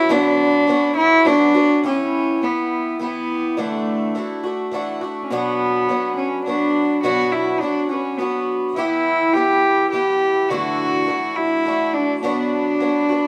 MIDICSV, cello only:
0, 0, Header, 1, 2, 480
1, 0, Start_track
1, 0, Tempo, 577478
1, 90, Time_signature, 3, 2, 24, 8
1, 11031, End_track
2, 0, Start_track
2, 0, Title_t, "Cello"
2, 0, Program_c, 0, 42
2, 0, Note_on_c, 0, 64, 110
2, 93, Note_on_c, 0, 62, 107
2, 105, Note_off_c, 0, 64, 0
2, 795, Note_off_c, 0, 62, 0
2, 800, Note_on_c, 0, 64, 112
2, 1047, Note_on_c, 0, 62, 107
2, 1059, Note_off_c, 0, 64, 0
2, 1529, Note_off_c, 0, 62, 0
2, 1544, Note_on_c, 0, 61, 94
2, 2022, Note_on_c, 0, 59, 78
2, 2034, Note_off_c, 0, 61, 0
2, 2497, Note_off_c, 0, 59, 0
2, 2510, Note_on_c, 0, 59, 85
2, 2982, Note_on_c, 0, 57, 77
2, 2994, Note_off_c, 0, 59, 0
2, 3698, Note_off_c, 0, 57, 0
2, 4346, Note_on_c, 0, 61, 51
2, 4409, Note_on_c, 0, 59, 87
2, 4422, Note_off_c, 0, 61, 0
2, 5117, Note_off_c, 0, 59, 0
2, 5122, Note_on_c, 0, 61, 72
2, 5351, Note_off_c, 0, 61, 0
2, 5363, Note_on_c, 0, 62, 83
2, 5816, Note_off_c, 0, 62, 0
2, 5845, Note_on_c, 0, 66, 92
2, 6083, Note_on_c, 0, 64, 77
2, 6096, Note_off_c, 0, 66, 0
2, 6317, Note_on_c, 0, 62, 85
2, 6329, Note_off_c, 0, 64, 0
2, 6554, Note_off_c, 0, 62, 0
2, 6559, Note_on_c, 0, 61, 76
2, 6796, Note_on_c, 0, 59, 75
2, 6809, Note_off_c, 0, 61, 0
2, 7166, Note_off_c, 0, 59, 0
2, 7270, Note_on_c, 0, 64, 92
2, 7759, Note_on_c, 0, 67, 95
2, 7771, Note_off_c, 0, 64, 0
2, 8233, Note_off_c, 0, 67, 0
2, 8238, Note_on_c, 0, 67, 92
2, 8714, Note_on_c, 0, 66, 92
2, 8727, Note_off_c, 0, 67, 0
2, 9442, Note_on_c, 0, 64, 96
2, 9454, Note_off_c, 0, 66, 0
2, 9918, Note_on_c, 0, 62, 92
2, 9931, Note_off_c, 0, 64, 0
2, 10143, Note_off_c, 0, 62, 0
2, 10148, Note_on_c, 0, 62, 86
2, 11031, Note_off_c, 0, 62, 0
2, 11031, End_track
0, 0, End_of_file